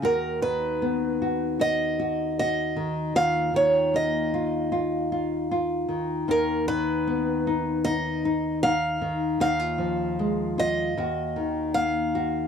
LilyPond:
<<
  \new Staff \with { instrumentName = "Steel-string acoustic guitar" } { \time 4/4 \key ces \lydian \tempo 4 = 77 ais'8 b'4. dis''4 dis''4 | f''8 des''8 ees''2 r4 | bes'8 b'4. dis''4 f''4 | f''4. ees''4. f''4 | }
  \new Staff \with { instrumentName = "Nylon-string guitar" } { \time 4/4 \key ces \lydian << { fis'4 b8 fis'8 fis'8 fis'8 fis'4 | f'4 bes8 f'8 f'8 f'8 f'4 | dis'4 b8 dis'8 dis'8 dis'8 dis'4 | ees'16 f'8. aes8 f'8 ges'4 bes8 ges'8 | } \\ { dis,8 dis2. dis8 | ees,8 ees2. ees8 | dis,8 dis2. dis8 | ees,8 f4. ees,8 ees4. | } >> }
>>